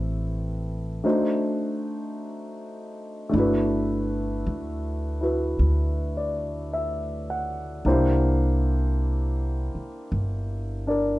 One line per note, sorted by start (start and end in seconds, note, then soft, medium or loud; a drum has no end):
0.00 1.00 A1 medium
0.00 1.02 A3 soft
0.00 1.05 C4 soft
0.00 1.05 E4 soft
0.00 1.05 G4 soft
0.00 1.06 B4 soft
1.04 3.28 A3 soft
1.04 3.30 D4 soft
1.04 3.33 D#4 soft
1.04 3.33 F#4 soft
1.04 3.33 C5 soft
3.29 7.83 A3 soft
3.29 7.84 D4 soft
3.34 4.43 G1 medium
3.34 5.19 E4 soft
3.34 5.21 F#4 soft
3.40 5.22 B4 soft
4.46 5.55 D2 medium
5.21 7.85 E4 soft
5.21 7.85 F#4 soft
5.21 7.86 B4 soft
5.59 7.81 D2 medium
6.17 6.97 D5 soft
6.73 7.64 E5 soft
7.30 8.10 F#5 soft
7.85 9.70 C2 medium
7.85 11.19 A#3 soft
7.85 10.86 D4 soft
7.85 11.19 E4 soft
7.85 11.19 G4 soft
7.85 11.19 C5 soft
9.75 muted upright bass stroke soft
10.12 11.19 G1 medium
10.87 11.19 D4 soft
10.87 11.19 A#4 soft
10.87 11.19 D5 soft